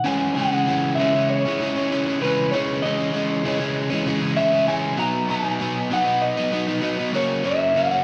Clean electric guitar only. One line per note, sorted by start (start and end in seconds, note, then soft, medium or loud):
0.06 0.34 G#5 medium
0.35 0.95 F#5 medium
0.95 1.28 E5 medium
1.30 2.21 C#5 medium
2.22 2.51 B4 medium
2.51 2.84 C#5 medium
2.82 4.33 D#5 medium
4.37 4.68 E5 loud
4.68 4.99 G#5 medium
4.99 5.28 A#5 loud
5.30 5.93 G#5 loud
5.93 6.21 F#5 medium
6.22 7.10 D#5 loud
7.16 7.45 C#5 medium
7.45 7.77 E5 medium
7.78 8.04 F#5 medium